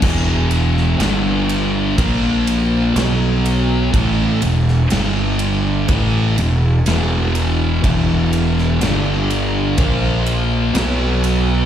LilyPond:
<<
  \new Staff \with { instrumentName = "Tonewheel organ" } { \time 4/4 \key e \phrygian \tempo 4 = 62 r1 | r1 | <e b e'>4 <g d' a'>4 <ais eis' c''>4 <b fis' b'>4 | }
  \new Staff \with { instrumentName = "Distorted electric guitar" } { \clef bass \time 4/4 \key e \phrygian <e, b, e>4 <g, d g>4 <ais, eis ais>4 <b, fis b>4 | <a, e a>8 <e, b,>8 <g, d g>4 <a, e a>8 <e, b,>8 <e, b, e>4 | <e, b, e>4 <g, d g>4 <ais, eis ais>4 <b, fis b>4 | }
  \new Staff \with { instrumentName = "Fingered electric bass" } { \clef bass \time 4/4 \key e \phrygian e,,4 g,,4 ais,,4 b,,4 | a,,8 e,,8 g,,4 a,,8 e,,8 e,,4 | e,,4 g,,4 ais,,4 b,,4 | }
  \new DrumStaff \with { instrumentName = "Drums" } \drummode { \time 4/4 <cymc bd>8 cymr16 sn16 <cymr sn>8 cymr8 <bd cymr>8 cymr8 <cymr sn>8 cymr8 | <bd cymr>8 cymr16 sn16 <cymr sn>8 cymr8 <bd cymr>8 cymr8 <cymr sn>8 cymr8 | <bd cymr>8 cymr16 sn16 <cymr sn>8 cymr8 <bd cymr>8 cymr8 <cymr sn>8 cymr8 | }
>>